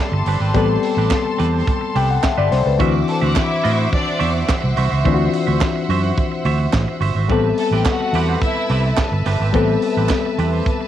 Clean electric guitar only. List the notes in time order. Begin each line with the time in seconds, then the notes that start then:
0.13 muted clean electric guitar stroke
0.28 C4 G4 B4
0.41 C4 G4 B4
0.56 C4 G4 B4
0.70 muted clean electric guitar stroke
0.84 muted clean electric guitar stroke
0.98 C4 G4 B4
1.12 muted clean electric guitar stroke
1.26 muted clean electric guitar stroke
1.38 C4 G4 B4
1.53 C4 G4 C5
1.67 muted clean electric guitar stroke
1.81 muted clean electric guitar stroke
1.95 C4 G4 B4
2.10 muted clean electric guitar stroke
2.24 muted clean electric guitar stroke
2.38 C4 G4 B4
2.53 muted clean electric guitar stroke
2.66 muted clean electric guitar stroke
2.80 F#4 C5 E5
2.95 muted clean electric guitar stroke
3.08 muted clean electric guitar stroke
3.22 F#4 C5 E5
3.36 muted clean electric guitar stroke
3.50 muted clean electric guitar stroke
3.64 F#4 C5 E5
3.78 F#4 C5 F#5
3.92 muted clean electric guitar stroke
4.05 muted clean electric guitar stroke
4.19 F#4 C5 E5
4.34 muted clean electric guitar stroke
4.48 muted clean electric guitar stroke
4.62 muted clean electric guitar stroke
4.77 F#4 C5 E5
4.91 F#4 C5 E5
5.05 F#4 C5 E5
5.19 muted clean electric guitar stroke
5.33 muted clean electric guitar stroke
5.47 F#4 C5 E5
5.61 muted clean electric guitar stroke
5.75 muted clean electric guitar stroke
5.90 F#4 C5 E5
6.03 F#4 C5 F#5
6.17 muted clean electric guitar stroke
6.32 muted clean electric guitar stroke
6.45 F#4 C5 E5
6.60 muted clean electric guitar stroke
6.74 muted clean electric guitar stroke
6.88 muted clean electric guitar stroke
7.01 F#4 C5 E5
7.16 F#4 C5 E5
7.30 C4 G4 B4
7.45 muted clean electric guitar stroke
7.59 muted clean electric guitar stroke
7.73 C4 G4 B4
7.87 muted clean electric guitar stroke
8.01 muted clean electric guitar stroke
8.15 C4 G4 B4
8.29 C4 G4 C5
8.42 muted clean electric guitar stroke
8.56 muted clean electric guitar stroke
8.70 C4 G4 B4
8.85 muted clean electric guitar stroke
8.99 muted clean electric guitar stroke
9.13 muted clean electric guitar stroke
9.26 C4 G4 B4
9.41 C4 G4 B4
9.55 C4 G4 B4
9.70 muted clean electric guitar stroke
9.83 muted clean electric guitar stroke
9.97 C4 G4 B4
10.11 muted clean electric guitar stroke
10.25 muted clean electric guitar stroke
10.38 C4 G4 B4
10.53 C4 G4 C5
10.67 muted clean electric guitar stroke
10.81 muted clean electric guitar stroke